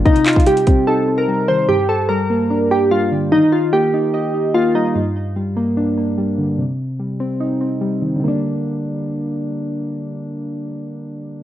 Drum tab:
HH |x--x--x-x-x-x--x--x-----------------------------|------------------------------------------------|------------------------------------------------|------------------------------------------------|
CP |------x-----------------------------------------|------------------------------------------------|------------------------------------------------|------------------------------------------------|
BD |o--------o--------o-----------------------------|------------------------------------------------|------------------------------------------------|------------------------------------------------|

HH |------------------------------------------------|------------------------------------------------|------------------------------------------------|
CP |------------------------------------------------|------------------------------------------------|------------------------------------------------|
BD |------------------------------------------------|------------------------------------------------|------------------------------------------------|